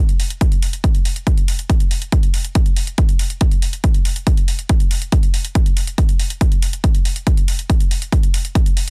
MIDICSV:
0, 0, Header, 1, 2, 480
1, 0, Start_track
1, 0, Tempo, 428571
1, 460, Time_signature, 4, 2, 24, 8
1, 9968, End_track
2, 0, Start_track
2, 0, Title_t, "Drums"
2, 100, Note_on_c, 9, 42, 52
2, 212, Note_off_c, 9, 42, 0
2, 220, Note_on_c, 9, 46, 90
2, 332, Note_off_c, 9, 46, 0
2, 340, Note_on_c, 9, 42, 50
2, 452, Note_off_c, 9, 42, 0
2, 460, Note_on_c, 9, 36, 116
2, 461, Note_on_c, 9, 42, 74
2, 572, Note_off_c, 9, 36, 0
2, 573, Note_off_c, 9, 42, 0
2, 580, Note_on_c, 9, 42, 47
2, 692, Note_off_c, 9, 42, 0
2, 700, Note_on_c, 9, 46, 102
2, 812, Note_off_c, 9, 46, 0
2, 820, Note_on_c, 9, 42, 51
2, 932, Note_off_c, 9, 42, 0
2, 939, Note_on_c, 9, 36, 118
2, 940, Note_on_c, 9, 42, 74
2, 1051, Note_off_c, 9, 36, 0
2, 1052, Note_off_c, 9, 42, 0
2, 1060, Note_on_c, 9, 42, 46
2, 1172, Note_off_c, 9, 42, 0
2, 1179, Note_on_c, 9, 46, 90
2, 1291, Note_off_c, 9, 46, 0
2, 1300, Note_on_c, 9, 42, 49
2, 1412, Note_off_c, 9, 42, 0
2, 1419, Note_on_c, 9, 36, 117
2, 1420, Note_on_c, 9, 42, 71
2, 1531, Note_off_c, 9, 36, 0
2, 1532, Note_off_c, 9, 42, 0
2, 1541, Note_on_c, 9, 42, 49
2, 1653, Note_off_c, 9, 42, 0
2, 1659, Note_on_c, 9, 46, 104
2, 1771, Note_off_c, 9, 46, 0
2, 1780, Note_on_c, 9, 42, 50
2, 1892, Note_off_c, 9, 42, 0
2, 1899, Note_on_c, 9, 36, 113
2, 1899, Note_on_c, 9, 42, 72
2, 2011, Note_off_c, 9, 36, 0
2, 2011, Note_off_c, 9, 42, 0
2, 2019, Note_on_c, 9, 42, 52
2, 2131, Note_off_c, 9, 42, 0
2, 2138, Note_on_c, 9, 46, 92
2, 2250, Note_off_c, 9, 46, 0
2, 2259, Note_on_c, 9, 42, 48
2, 2371, Note_off_c, 9, 42, 0
2, 2378, Note_on_c, 9, 42, 71
2, 2379, Note_on_c, 9, 36, 114
2, 2490, Note_off_c, 9, 42, 0
2, 2491, Note_off_c, 9, 36, 0
2, 2498, Note_on_c, 9, 42, 49
2, 2610, Note_off_c, 9, 42, 0
2, 2618, Note_on_c, 9, 46, 101
2, 2730, Note_off_c, 9, 46, 0
2, 2738, Note_on_c, 9, 42, 50
2, 2850, Note_off_c, 9, 42, 0
2, 2858, Note_on_c, 9, 42, 73
2, 2859, Note_on_c, 9, 36, 115
2, 2970, Note_off_c, 9, 42, 0
2, 2971, Note_off_c, 9, 36, 0
2, 2977, Note_on_c, 9, 42, 48
2, 3089, Note_off_c, 9, 42, 0
2, 3097, Note_on_c, 9, 46, 87
2, 3209, Note_off_c, 9, 46, 0
2, 3217, Note_on_c, 9, 42, 50
2, 3329, Note_off_c, 9, 42, 0
2, 3337, Note_on_c, 9, 42, 71
2, 3339, Note_on_c, 9, 36, 113
2, 3449, Note_off_c, 9, 42, 0
2, 3451, Note_off_c, 9, 36, 0
2, 3458, Note_on_c, 9, 42, 48
2, 3570, Note_off_c, 9, 42, 0
2, 3576, Note_on_c, 9, 46, 102
2, 3688, Note_off_c, 9, 46, 0
2, 3697, Note_on_c, 9, 42, 48
2, 3809, Note_off_c, 9, 42, 0
2, 3817, Note_on_c, 9, 42, 72
2, 3819, Note_on_c, 9, 36, 109
2, 3929, Note_off_c, 9, 42, 0
2, 3931, Note_off_c, 9, 36, 0
2, 3937, Note_on_c, 9, 42, 49
2, 4049, Note_off_c, 9, 42, 0
2, 4057, Note_on_c, 9, 46, 87
2, 4169, Note_off_c, 9, 46, 0
2, 4178, Note_on_c, 9, 42, 49
2, 4290, Note_off_c, 9, 42, 0
2, 4298, Note_on_c, 9, 42, 75
2, 4299, Note_on_c, 9, 36, 110
2, 4410, Note_off_c, 9, 42, 0
2, 4411, Note_off_c, 9, 36, 0
2, 4418, Note_on_c, 9, 42, 50
2, 4530, Note_off_c, 9, 42, 0
2, 4538, Note_on_c, 9, 46, 100
2, 4650, Note_off_c, 9, 46, 0
2, 4659, Note_on_c, 9, 42, 51
2, 4771, Note_off_c, 9, 42, 0
2, 4779, Note_on_c, 9, 36, 109
2, 4779, Note_on_c, 9, 42, 74
2, 4891, Note_off_c, 9, 36, 0
2, 4891, Note_off_c, 9, 42, 0
2, 4899, Note_on_c, 9, 42, 50
2, 5011, Note_off_c, 9, 42, 0
2, 5018, Note_on_c, 9, 46, 88
2, 5130, Note_off_c, 9, 46, 0
2, 5138, Note_on_c, 9, 42, 49
2, 5250, Note_off_c, 9, 42, 0
2, 5257, Note_on_c, 9, 42, 71
2, 5259, Note_on_c, 9, 36, 113
2, 5369, Note_off_c, 9, 42, 0
2, 5371, Note_off_c, 9, 36, 0
2, 5378, Note_on_c, 9, 42, 50
2, 5490, Note_off_c, 9, 42, 0
2, 5497, Note_on_c, 9, 46, 100
2, 5609, Note_off_c, 9, 46, 0
2, 5619, Note_on_c, 9, 42, 51
2, 5731, Note_off_c, 9, 42, 0
2, 5738, Note_on_c, 9, 42, 75
2, 5739, Note_on_c, 9, 36, 108
2, 5850, Note_off_c, 9, 42, 0
2, 5851, Note_off_c, 9, 36, 0
2, 5858, Note_on_c, 9, 42, 49
2, 5970, Note_off_c, 9, 42, 0
2, 5979, Note_on_c, 9, 46, 84
2, 6091, Note_off_c, 9, 46, 0
2, 6099, Note_on_c, 9, 42, 51
2, 6211, Note_off_c, 9, 42, 0
2, 6218, Note_on_c, 9, 42, 77
2, 6219, Note_on_c, 9, 36, 111
2, 6330, Note_off_c, 9, 42, 0
2, 6331, Note_off_c, 9, 36, 0
2, 6340, Note_on_c, 9, 42, 52
2, 6452, Note_off_c, 9, 42, 0
2, 6459, Note_on_c, 9, 46, 99
2, 6571, Note_off_c, 9, 46, 0
2, 6579, Note_on_c, 9, 42, 53
2, 6691, Note_off_c, 9, 42, 0
2, 6699, Note_on_c, 9, 36, 110
2, 6699, Note_on_c, 9, 42, 76
2, 6811, Note_off_c, 9, 36, 0
2, 6811, Note_off_c, 9, 42, 0
2, 6819, Note_on_c, 9, 42, 51
2, 6931, Note_off_c, 9, 42, 0
2, 6938, Note_on_c, 9, 46, 88
2, 7050, Note_off_c, 9, 46, 0
2, 7059, Note_on_c, 9, 42, 52
2, 7171, Note_off_c, 9, 42, 0
2, 7179, Note_on_c, 9, 36, 112
2, 7179, Note_on_c, 9, 42, 76
2, 7291, Note_off_c, 9, 36, 0
2, 7291, Note_off_c, 9, 42, 0
2, 7299, Note_on_c, 9, 42, 53
2, 7411, Note_off_c, 9, 42, 0
2, 7419, Note_on_c, 9, 46, 102
2, 7531, Note_off_c, 9, 46, 0
2, 7539, Note_on_c, 9, 42, 53
2, 7651, Note_off_c, 9, 42, 0
2, 7659, Note_on_c, 9, 36, 112
2, 7659, Note_on_c, 9, 42, 79
2, 7771, Note_off_c, 9, 36, 0
2, 7771, Note_off_c, 9, 42, 0
2, 7779, Note_on_c, 9, 42, 55
2, 7891, Note_off_c, 9, 42, 0
2, 7899, Note_on_c, 9, 46, 88
2, 8011, Note_off_c, 9, 46, 0
2, 8019, Note_on_c, 9, 42, 50
2, 8131, Note_off_c, 9, 42, 0
2, 8139, Note_on_c, 9, 36, 117
2, 8139, Note_on_c, 9, 42, 84
2, 8251, Note_off_c, 9, 36, 0
2, 8251, Note_off_c, 9, 42, 0
2, 8259, Note_on_c, 9, 42, 54
2, 8371, Note_off_c, 9, 42, 0
2, 8379, Note_on_c, 9, 46, 108
2, 8491, Note_off_c, 9, 46, 0
2, 8500, Note_on_c, 9, 42, 53
2, 8612, Note_off_c, 9, 42, 0
2, 8619, Note_on_c, 9, 36, 117
2, 8620, Note_on_c, 9, 42, 78
2, 8731, Note_off_c, 9, 36, 0
2, 8732, Note_off_c, 9, 42, 0
2, 8741, Note_on_c, 9, 42, 53
2, 8853, Note_off_c, 9, 42, 0
2, 8860, Note_on_c, 9, 46, 93
2, 8972, Note_off_c, 9, 46, 0
2, 8981, Note_on_c, 9, 42, 54
2, 9093, Note_off_c, 9, 42, 0
2, 9099, Note_on_c, 9, 36, 116
2, 9101, Note_on_c, 9, 42, 79
2, 9211, Note_off_c, 9, 36, 0
2, 9213, Note_off_c, 9, 42, 0
2, 9222, Note_on_c, 9, 42, 54
2, 9334, Note_off_c, 9, 42, 0
2, 9341, Note_on_c, 9, 46, 105
2, 9453, Note_off_c, 9, 46, 0
2, 9461, Note_on_c, 9, 42, 52
2, 9573, Note_off_c, 9, 42, 0
2, 9579, Note_on_c, 9, 36, 112
2, 9581, Note_on_c, 9, 42, 76
2, 9691, Note_off_c, 9, 36, 0
2, 9693, Note_off_c, 9, 42, 0
2, 9701, Note_on_c, 9, 42, 55
2, 9813, Note_off_c, 9, 42, 0
2, 9820, Note_on_c, 9, 46, 91
2, 9932, Note_off_c, 9, 46, 0
2, 9968, End_track
0, 0, End_of_file